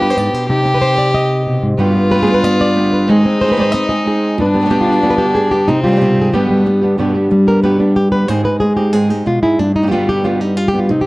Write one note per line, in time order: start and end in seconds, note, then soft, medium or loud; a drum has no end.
0.00 0.16 G2 medium
0.00 0.47 B3 medium
0.00 0.50 D4 soft
0.00 0.48 G4 loud
0.00 0.10 B4 medium
0.10 0.18 C5 medium
0.17 0.33 G#2 medium
0.17 0.34 D5 medium
0.33 0.49 B2 medium
0.33 0.74 C5 medium
0.49 1.79 C3 medium
0.49 0.64 C4 soft
0.49 1.78 D#4 soft
0.49 1.59 G4 loud
0.49 1.78 G4 medium
0.65 1.13 C4 medium
0.74 0.81 B4 medium
0.81 0.98 C5 loud
0.98 1.14 D5 loud
1.14 1.77 C4 medium
1.14 1.78 D#5 medium
1.47 1.62 B2 medium
1.63 1.78 G#2 medium
1.78 1.94 G2 medium
1.78 3.08 G2 medium
1.78 1.94 B2 medium
1.78 1.94 D3 medium
1.78 1.94 G3 medium
1.78 1.94 B3 medium
1.78 3.10 F4 loud
1.78 1.93 G4 medium
1.78 2.10 B4 soft
1.94 2.11 D3 soft
1.94 2.10 G3 soft
1.94 2.09 B3 soft
1.94 2.43 B3 medium
1.94 2.08 G4 soft
2.10 2.16 B2 soft
2.10 2.17 D3 soft
2.10 2.13 G3 soft
2.10 2.13 B3 soft
2.10 2.13 G4 soft
2.10 2.33 B4 medium
2.14 2.21 B2 soft
2.14 2.17 G3 soft
2.14 2.17 B3 soft
2.14 2.18 G4 soft
2.18 2.21 D3 medium
2.18 2.22 G3 soft
2.18 2.22 B3 medium
2.18 2.22 G4 soft
2.22 2.26 B2 medium
2.22 2.26 D3 medium
2.22 2.26 G3 medium
2.22 2.26 B3 medium
2.22 2.27 G4 medium
2.22 2.33 G#4 medium
2.26 2.41 G2 medium
2.26 2.42 B2 medium
2.26 2.42 D3 medium
2.26 2.42 G3 medium
2.26 2.42 B3 medium
2.26 3.08 D4 soft
2.26 2.42 G4 medium
2.34 2.44 B4 medium
2.43 3.07 B3 medium
2.43 2.59 D5 loud
2.43 muted nylon-string guitar stroke medium
2.59 2.74 D3 soft
2.59 2.75 G3 soft
2.59 2.75 B3 soft
2.59 2.75 G4 soft
2.59 2.93 D5 medium
2.75 3.08 D3 soft
2.75 3.08 G3 soft
2.75 3.08 B3 soft
2.75 3.09 G4 soft
2.93 3.07 B4 soft
3.08 3.24 G#2 medium
3.08 3.24 D#3 medium
3.08 3.24 G#3 medium
3.08 4.37 G#3 medium
3.08 3.24 C4 medium
3.08 3.24 C4 soft
3.08 4.40 D#4 loud
3.08 3.24 D#4 medium
3.08 4.38 D#4 soft
3.08 3.23 G#4 medium
3.08 3.51 G#4 soft
3.24 3.41 G#3 soft
3.24 3.40 C4 soft
3.24 3.73 C4 medium
3.24 3.40 D#4 soft
3.24 3.39 G#4 soft
3.40 3.46 D#3 soft
3.40 3.47 G#3 soft
3.40 3.43 C4 soft
3.40 3.47 C4 soft
3.40 3.43 D#4 soft
3.40 3.47 D#4 soft
3.40 3.43 G#4 soft
3.40 3.60 C5 medium
3.44 3.51 D#3 soft
3.44 3.51 G#3 soft
3.44 3.52 C4 soft
3.44 3.47 G#4 soft
3.49 3.56 D#3 medium
3.49 3.56 G#3 medium
3.49 3.52 D#4 soft
3.49 3.52 G#4 medium
3.49 3.93 B4 medium
3.53 3.72 G#2 medium
3.53 3.56 C4 medium
3.53 3.56 D#4 medium
3.53 3.57 G#4 medium
3.57 3.72 D#3 medium
3.57 3.72 G#3 medium
3.57 3.72 C4 medium
3.57 3.73 D#4 medium
3.57 3.73 G#4 medium
3.57 3.63 D5 medium
3.62 3.72 C5 medium
3.72 4.37 C4 medium
3.72 3.88 D#5 loud
3.72 muted nylon-string guitar stroke medium
3.89 4.04 G#3 soft
3.89 4.05 C4 soft
3.89 4.06 D#4 soft
3.89 4.05 G#4 soft
3.89 4.38 D#5 medium
4.05 4.38 G#3 soft
4.05 4.38 C4 soft
4.05 4.38 D#4 soft
4.05 4.37 G#4 soft
4.05 4.39 G#4 medium
4.38 5.69 G2 medium
4.38 4.54 B3 soft
4.38 5.70 D4 loud
4.38 4.88 D4 soft
4.38 4.70 B4 soft
4.38 muted nylon-string guitar stroke medium
4.54 4.60 D3 soft
4.54 4.60 G3 soft
4.54 4.61 B3 soft
4.54 5.02 B3 medium
4.54 4.61 G4 soft
4.61 4.64 B2 soft
4.61 4.64 D3 soft
4.61 4.65 G3 soft
4.61 4.65 B3 soft
4.61 4.66 G4 soft
4.66 4.69 B2 medium
4.66 4.69 D3 medium
4.66 4.70 G3 medium
4.66 4.70 B3 medium
4.66 4.70 G4 medium
4.70 5.01 G2 medium
4.70 5.02 B2 medium
4.70 5.02 D3 medium
4.70 5.03 G3 medium
4.70 5.03 B3 medium
4.70 4.91 G4 medium
4.70 5.03 G4 medium
4.81 5.25 F4 medium
4.89 5.71 D4 soft
4.89 5.10 G4 medium
5.03 5.35 G2 medium
5.03 5.35 B2 medium
5.03 5.35 D3 medium
5.03 5.35 G3 medium
5.03 5.67 B3 medium
5.03 5.35 B3 medium
5.03 5.36 G4 medium
5.10 5.18 B4 loud
5.18 5.50 G4 medium
5.35 5.52 G#4 medium
5.35 muted nylon-string guitar stroke soft
5.51 5.69 D3 soft
5.51 5.69 G3 soft
5.51 5.68 B3 soft
5.51 5.68 G4 medium
5.51 5.68 G4 soft
5.68 6.34 C3 medium
5.68 6.35 C4 medium
5.68 5.83 D#4 medium
5.68 muted nylon-string guitar stroke medium
5.83 5.90 D#3 soft
5.83 6.32 G3 medium
5.83 5.87 D4 soft
5.83 6.33 F4 medium
5.83 5.87 G4 soft
5.88 5.95 D#3 soft
5.88 5.91 G3 soft
5.88 5.91 D4 soft
5.88 5.92 G4 soft
5.92 6.00 D#3 medium
5.92 5.95 G3 soft
5.92 5.96 D4 soft
5.92 5.96 G4 medium
5.97 6.33 C3 medium
5.97 6.00 G3 medium
5.97 6.00 D4 medium
5.97 6.01 G4 medium
5.97 6.21 G4 medium
6.01 6.18 B2 medium
6.01 6.33 D#3 medium
6.01 6.33 G3 medium
6.01 6.33 D4 medium
6.01 6.33 G4 medium
6.18 6.33 G#2 medium
6.18 6.33 G#4 medium
6.33 6.65 G2 medium
6.33 6.98 G2 medium
6.33 6.65 B2 medium
6.33 6.65 D3 medium
6.33 6.65 G3 medium
6.33 6.49 G3 soft
6.33 6.83 B3 medium
6.33 6.66 B3 medium
6.33 6.66 B3 soft
6.33 6.83 D4 soft
6.33 6.99 G4 medium
6.33 6.66 G4 medium
6.51 6.97 G3 medium
6.66 6.97 B3 soft
6.66 muted nylon-string guitar stroke medium
6.82 6.98 D3 soft
6.82 6.98 G3 soft
6.82 6.98 B3 soft
6.82 7.00 D4 soft
6.82 6.98 G4 soft
6.98 7.14 G2 medium
6.98 8.29 G2 medium
6.98 7.14 B2 medium
6.98 7.15 D3 medium
6.98 7.15 G3 medium
6.98 7.31 G3 soft
6.98 7.14 B3 medium
6.98 7.15 B3 soft
6.98 7.79 D4 soft
6.98 7.13 G4 medium
7.02 7.48 G4 soft
7.14 7.30 D3 soft
7.14 7.30 G3 soft
7.14 7.30 B3 soft
7.14 8.28 B3 soft
7.14 7.30 G4 soft
7.31 8.27 G3 medium
7.31 muted nylon-string guitar stroke soft
7.47 7.62 D3 soft
7.47 7.63 G3 soft
7.47 7.63 B3 soft
7.47 7.63 G4 soft
7.47 7.63 A#4 medium
7.63 7.79 G2 medium
7.63 7.79 B2 medium
7.63 7.79 D3 medium
7.63 7.79 G3 medium
7.63 7.78 B3 medium
7.63 7.78 G4 medium
7.63 7.80 B4 medium
7.79 7.95 D3 soft
7.79 7.95 G3 soft
7.79 7.95 B3 soft
7.79 7.96 D4 soft
7.79 7.95 G4 soft
7.96 8.12 G4 medium
7.96 muted nylon-string guitar stroke soft
8.11 8.29 D3 soft
8.11 8.29 G3 soft
8.11 8.28 B3 soft
8.11 8.28 G4 soft
8.11 8.28 B4 medium
8.28 8.44 G#2 medium
8.28 9.26 G#2 medium
8.28 8.45 D#3 medium
8.28 8.45 G#3 medium
8.28 8.44 C4 medium
8.28 8.43 D#4 medium
8.28 8.43 G#4 medium
8.28 8.45 C5 medium
8.44 8.60 G#3 soft
8.44 8.60 C4 soft
8.44 8.60 D#4 soft
8.44 8.60 G#4 soft
8.44 8.60 B4 medium
8.60 9.57 G#3 medium
8.60 8.76 G#4 medium
8.60 muted nylon-string guitar stroke soft
8.76 8.93 G#3 soft
8.76 8.93 C4 soft
8.76 8.93 D#4 soft
8.76 8.93 G4 medium
8.76 8.93 G#4 soft
8.93 9.09 G#2 medium
8.93 9.10 D#3 medium
8.93 9.10 G#3 medium
8.93 9.10 C4 medium
8.93 9.09 D#4 medium
8.93 9.10 G#4 medium
8.93 9.08 G#4 medium
9.09 9.25 G#3 soft
9.09 9.25 C4 soft
9.09 9.25 D#4 soft
9.09 9.27 G4 medium
9.09 9.26 G#4 soft
9.26 9.43 B2 medium
9.26 9.42 F4 medium
9.26 muted nylon-string guitar stroke medium
9.42 9.59 G#2 medium
9.42 9.59 G#3 soft
9.42 9.59 C4 soft
9.42 9.59 D#4 soft
9.42 9.59 E4 medium
9.42 9.58 G#4 soft
9.59 10.90 G2 medium
9.59 9.75 D4 medium
9.59 muted nylon-string guitar stroke medium
9.76 9.91 D#4 medium
9.82 9.86 B2 soft
9.82 9.86 D3 soft
9.82 9.86 G3 soft
9.82 9.86 B3 soft
9.82 9.87 G4 soft
9.87 9.90 B2 soft
9.87 9.91 D3 medium
9.87 9.91 G3 soft
9.87 9.91 B3 medium
9.87 9.91 G4 medium
9.91 10.23 G2 medium
9.91 10.23 B2 medium
9.91 10.24 D3 medium
9.91 10.24 G3 medium
9.91 10.90 G3 medium
9.91 10.24 B3 medium
9.91 10.08 F4 medium
9.91 10.24 G4 medium
10.09 10.25 G4 loud
10.24 10.40 G2 medium
10.24 10.40 B2 medium
10.24 10.40 D3 medium
10.24 10.40 G3 medium
10.24 10.40 B3 medium
10.24 10.41 F4 medium
10.24 10.39 G4 medium
10.40 10.56 D3 soft
10.40 10.56 G3 soft
10.40 10.57 B3 soft
10.40 10.57 D#4 medium
10.40 10.56 G4 soft
10.57 10.68 F4 medium
10.57 muted nylon-string guitar stroke medium
10.68 10.79 G4 medium
10.73 10.90 D3 soft
10.73 10.90 G3 soft
10.73 10.89 B3 soft
10.73 10.88 B3 soft
10.73 10.89 G4 soft
10.79 10.90 F4 medium
10.89 11.06 C3 medium
10.89 11.06 C4 soft
10.89 11.01 D#4 medium
10.89 muted nylon-string guitar stroke medium
11.01 11.06 G4 medium